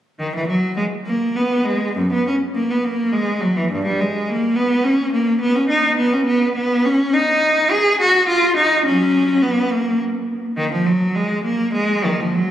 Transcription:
0.19 0.33 D#3 medium
0.36 0.49 E3 medium
0.48 0.77 F#3 medium
0.76 0.84 G#3 medium
1.07 1.35 A#3 medium
1.36 1.66 B3 medium
1.65 1.96 G#3 medium
1.96 2.11 F#2 medium
2.13 2.26 B3 medium
2.27 2.35 C#4 medium
2.55 2.69 A#3 medium
2.71 2.85 B3 medium
2.84 3.13 A#3 medium
3.12 3.42 G#3 medium
3.41 3.56 F#3 medium
3.57 3.71 E3 medium
3.71 3.85 G2 medium
3.85 3.99 G3 medium
4.01 4.29 G#3 medium
4.29 4.58 A#3 medium
4.56 4.85 B3 medium
4.84 5.13 C#4 medium
5.13 5.41 A#3 medium
5.41 5.56 B3 medium
5.56 5.71 C#4 medium
5.69 5.98 D#4 medium
5.97 6.12 B3 medium
6.13 6.28 C#4 medium
6.26 6.55 B3 medium
6.56 6.84 B3 medium
6.86 7.14 C#4 medium
7.14 7.71 D#4 medium
7.71 8.00 G#4 medium
8.00 8.28 F#4 medium
8.29 8.57 F4 medium
8.57 8.85 D#4 medium
8.86 9.39 F#3 medium
8.86 9.41 C#4 medium
9.42 9.71 B3 medium
9.71 10.00 A#3 medium
10.57 10.71 D#3 medium
10.72 10.86 F3 medium
10.86 11.15 F#3 medium
11.15 11.45 G#3 medium
11.44 11.74 A#3 medium
11.73 12.04 G#3 medium
12.05 12.21 D#3 medium
12.20 12.36 F3 medium
12.35 12.51 F#3 medium

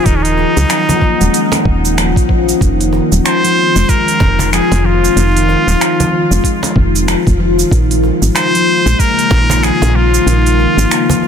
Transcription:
0.00 2.58 D#3 medium
0.05 0.46 D#1 loud
0.05 0.24 D#3 loud
0.05 2.58 A#3 medium
0.05 2.58 C#4 medium
0.05 0.18 D#4 medium
0.05 2.58 F#5 medium
0.05 kick loud
0.05 open hi-hat medium
0.05 cabasa soft
0.16 0.24 C#4 medium
0.22 1.97 D#4 loud
0.22 open hi-hat soft
0.22 cabasa soft
0.38 cajon slap soft
0.57 0.65 C#2 medium
0.57 0.87 F#3 medium
0.57 open hi-hat soft
0.57 cabasa medium
0.70 finger snap loud
0.70 open hi-hat medium
0.70 cabasa medium
0.89 1.01 F3 medium
0.89 cajon bass medium
0.89 open hi-hat soft
0.89 cabasa soft
1.01 kick medium
1.01 cajon slap soft
1.21 1.29 D#1 medium
1.21 1.64 G#3 medium
1.21 open hi-hat soft
1.21 cabasa medium
1.34 open hi-hat medium
1.34 cabasa soft
1.52 finger snap soft
1.52 cajon slap medium
1.52 open hi-hat soft
1.52 cabasa soft
1.65 2.18 D#1 loud
1.65 1.84 D#3 medium
1.65 kick loud
1.85 open hi-hat soft
1.85 cabasa medium
1.97 2.08 F3 medium
1.97 finger snap loud
1.97 open hi-hat medium
1.97 cabasa soft
2.16 2.54 A#1 loud
2.16 kick loud
2.16 open hi-hat soft
2.16 cabasa soft
2.29 2.47 F3 loud
2.29 kick medium
2.49 open hi-hat soft
2.49 cabasa medium
2.61 3.01 F1 medium
2.61 2.79 D#3 medium
2.61 7.68 D#3 medium
2.61 11.28 G#3 medium
2.61 7.68 C4 medium
2.61 10.23 F4 medium
2.61 kick loud
2.61 open hi-hat medium
2.61 cabasa medium
2.81 open hi-hat soft
2.81 cabasa soft
2.93 cajon slap soft
3.12 3.20 D#1 medium
3.12 3.42 F3 medium
3.12 cabasa medium
3.26 3.91 C5 loud
3.26 finger snap loud
3.26 open hi-hat medium
3.26 cabasa medium
3.44 3.56 F3 medium
3.44 open hi-hat soft
3.44 cabasa soft
3.76 3.84 F1 medium
3.76 4.19 G#3 medium
3.76 cabasa medium
3.89 4.52 A#4 loud
3.89 kick loud
3.89 open hi-hat medium
3.89 cabasa medium
4.08 open hi-hat soft
4.08 cabasa soft
4.20 4.61 F1 loud
4.20 4.39 D#3 medium
4.20 kick loud
4.20 cajon slap medium
4.39 finger snap soft
4.39 cajon bass medium
4.39 open hi-hat soft
4.39 cabasa medium
4.53 4.63 F3 medium
4.53 4.87 G#4 loud
4.53 finger snap loud
4.53 open hi-hat medium
4.53 cabasa medium
4.72 5.09 F1 loud
4.72 cajon slap medium
4.72 open hi-hat soft
4.72 cabasa soft
4.85 5.03 F3 loud
4.85 6.77 F4 loud
5.05 cabasa medium
5.16 5.56 F1 loud
5.16 5.35 D#3 loud
5.16 open hi-hat medium
5.16 cabasa medium
5.37 open hi-hat soft
5.37 cabasa soft
5.48 cajon slap soft
5.67 5.76 D#1 medium
5.67 5.97 F3 medium
5.67 cabasa medium
5.81 finger snap loud
5.81 open hi-hat medium
5.81 cabasa medium
6.00 6.12 F3 medium
6.00 cajon bass medium
6.00 open hi-hat soft
6.00 cabasa soft
6.31 6.39 F1 medium
6.31 6.75 G#3 medium
6.31 cabasa medium
6.44 kick medium
6.44 open hi-hat medium
6.44 cabasa medium
6.63 cajon slap medium
6.63 open hi-hat soft
6.63 cabasa soft
6.76 7.16 F1 loud
6.76 6.94 D#3 medium
6.76 kick loud
6.96 open hi-hat soft
6.96 cabasa medium
7.08 7.19 F3 medium
7.08 finger snap loud
7.08 open hi-hat medium
7.08 cabasa medium
7.27 7.64 F1 loud
7.27 kick loud
7.27 open hi-hat soft
7.27 cabasa soft
7.40 7.58 F3 loud
7.59 cabasa medium
7.71 8.12 A#1 loud
7.71 11.28 C#3 medium
7.71 7.90 D#3 loud
7.71 11.28 A#3 medium
7.71 kick loud
7.71 open hi-hat medium
7.71 cabasa medium
7.91 open hi-hat soft
7.91 cabasa soft
8.03 cajon slap soft
8.22 8.31 G#1 medium
8.22 8.53 F3 medium
8.22 cabasa medium
8.36 9.01 C5 loud
8.36 finger snap loud
8.36 open hi-hat medium
8.36 cabasa medium
8.55 8.67 F3 medium
8.55 open hi-hat soft
8.55 cabasa soft
8.86 8.94 A#1 medium
8.86 9.30 G#3 medium
8.86 cabasa medium
8.99 9.65 A#4 loud
8.99 kick loud
8.99 open hi-hat medium
8.99 cabasa medium
9.19 open hi-hat soft
9.19 cabasa soft
9.31 9.71 A#1 loud
9.31 9.49 D#3 medium
9.31 kick loud
9.31 cajon slap medium
9.50 finger snap soft
9.50 cajon bass medium
9.50 open hi-hat soft
9.50 cabasa medium
9.63 9.74 F3 medium
9.63 9.97 G#4 loud
9.63 finger snap loud
9.63 open hi-hat medium
9.63 cabasa medium
9.82 10.20 A#1 loud
9.82 cajon slap medium
9.82 open hi-hat soft
9.82 cabasa soft
9.95 10.13 F3 loud
9.95 11.28 F4 loud
10.14 cabasa medium
10.26 10.67 A#1 medium
10.26 10.45 D#3 loud
10.26 11.28 D#4 medium
10.26 open hi-hat medium
10.26 cabasa medium
10.46 open hi-hat soft
10.46 cabasa soft
10.59 cajon slap soft
10.77 10.86 G#1 medium
10.77 11.08 F3 medium
10.77 cabasa medium
10.91 finger snap loud
10.91 open hi-hat medium
10.91 cabasa medium
11.09 11.22 F3 medium
11.09 cajon bass medium
11.09 open hi-hat soft
11.09 cabasa soft
11.23 cajon slap soft

